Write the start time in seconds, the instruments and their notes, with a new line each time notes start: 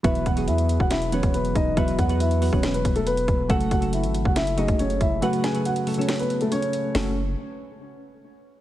0.03 808-style bass E1, synth keys E3 F#3 B3 F#4 B4, grand piano E4 E5, kick, closed hi-hat
0.15 closed hi-hat
0.26 808-style bass E1, grand piano F#4 F#5, kick, closed hi-hat
0.36 synth keys E3 F#3 B3 F#4 G#4, closed hi-hat
0.47 808-style bass E2, grand piano E4 E5, closed hi-hat
0.58 closed hi-hat
0.69 closed hi-hat
0.80 808-style bass E1, grand piano F#4 F#5, kick
0.91 grand piano E4 E5, snare, closed hi-hat
1.02 closed hi-hat
1.12 synth keys E3 F#3 B3 F#4 B4, grand piano C#4 C#5, closed hi-hat
1.23 808-style bass E1, kick, closed hi-hat
1.34 grand piano B3 B4, closed hi-hat
1.45 closed hi-hat
1.55 808-style bass E1, grand piano D#4 D#5, kick, closed hi-hat
1.76 808-style bass E1, synth keys E3 F#3 B3 F#4 B4, grand piano E4 E5, kick, closed hi-hat
1.88 closed hi-hat
1.99 808-style bass E2, grand piano F#4 F#5, kick, closed hi-hat
2.08 synth keys E3 F#3 B3 F#4 B4, closed hi-hat
2.20 grand piano E4 E5, closed hi-hat
2.31 closed hi-hat
2.41 synth keys E3 F#3 B3 F#4 B4, open hi-hat
2.52 808-style bass E1, synth keys E3 F#3 B3 F#4 B4, grand piano C#4 C#5, kick
2.63 snare, closed hi-hat
2.74 grand piano B3 B4, closed hi-hat
2.85 808-style bass E1, kick, closed hi-hat
2.96 grand piano A3 A4, closed hi-hat
3.07 grand piano B3 B4, closed hi-hat
3.17 closed hi-hat
3.28 808-style bass E1, kick, closed hi-hat
3.49 808-style bass F#1, synth keys C#3 F#3 A3 F#4 A4, grand piano F#4 F#5, kick, closed hi-hat
3.61 closed hi-hat
3.71 808-style bass F#1, grand piano F#4 F#5, kick, closed hi-hat
3.81 synth keys C#3 F#3 A3 F#4 A4, closed hi-hat
3.93 grand piano E4 E5, closed hi-hat
4.04 808-style bass G#1, closed hi-hat
4.15 closed hi-hat
4.25 808-style bass F#1, grand piano F#4 F#5, kick
4.36 grand piano E4 E5, snare, closed hi-hat
4.47 closed hi-hat
4.57 synth keys C#3 F#3 A3 F#4 G#4, grand piano D#4 D#5, closed hi-hat
4.68 808-style bass F#1, kick, closed hi-hat
4.79 grand piano C#4 C#5, closed hi-hat
4.90 closed hi-hat
5.01 808-style bass F#1, grand piano E4 E5, kick, closed hi-hat
5.21 synth keys C#3 F#3 A3 F#4 B4, grand piano F#4 F#5, closed hi-hat
5.33 closed hi-hat
5.44 grand piano G#4 G#5, snare, closed hi-hat
5.54 synth keys C#3 F#3 A3 F#4 B4, closed hi-hat
5.65 grand piano F#4 F#5, closed hi-hat
5.76 closed hi-hat
5.86 synth keys C#3 F#3 A3 F#4 A4, closed hi-hat, open hi-hat
5.94 synth keys C#3 F#3 A3, grand piano C#5, closed hi-hat
5.99 grand piano C#4, synth keys F#4 A4, closed hi-hat
6.09 snare, closed hi-hat
6.16 closed hi-hat
6.19 grand piano B3 B4, closed hi-hat
6.23 closed hi-hat
6.30 closed hi-hat
6.41 grand piano A3 A4, closed hi-hat
6.52 grand piano C#4 C#5, closed hi-hat
6.62 closed hi-hat
6.73 closed hi-hat
6.95 808-style bass F#1, synth keys C#3 A3 F#4 A4, grand piano C#4, snare, open hi-hat